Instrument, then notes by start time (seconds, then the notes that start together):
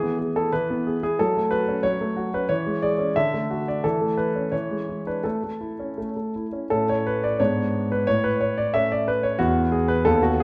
grand piano
Already playing: E3 G#4
0.03 B3
0.19 G#4
0.36 E4 A4
0.53 E3 B4
0.70 B3
0.87 G#4
1.03 E4 G#4
1.19 F#3 A4
1.37 A3
1.51 F#4 B4
1.68 C#4
1.83 F#3 C#5
2.01 A3
2.16 F#4
2.34 C#4 B4
2.49 E3 C#5
2.66 G#3
2.82 G#4 D5
2.99 C#4
3.16 D3 E5
3.34 A3
3.50 F#4
3.68 D4 D5
3.84 E3 A4
4.01 A3
4.17 E4 B4
4.36 C#4
4.52 E3 C#5
4.71 G#3
4.89 E4
5.07 D4 B4
5.24 A3 A4
5.44 A3
5.61 E4
5.79 C#4
5.98 A3
6.16 A3
6.36 E4
6.53 C#4
6.70 A2 C#4 A4
6.89 C#5
7.07 B4
7.24 D5
7.40 G#2 B3 D4 C#5
7.92 B4
8.07 A2 C#5
8.24 B4
8.41 C#5
8.58 D5
8.74 A3 C#4 E5
8.92 D5
9.08 B4
9.23 C#5
9.39 E2 B3 F#4
9.72 G#4
9.88 B4
10.05 D#2 B3 A4
10.23 F#4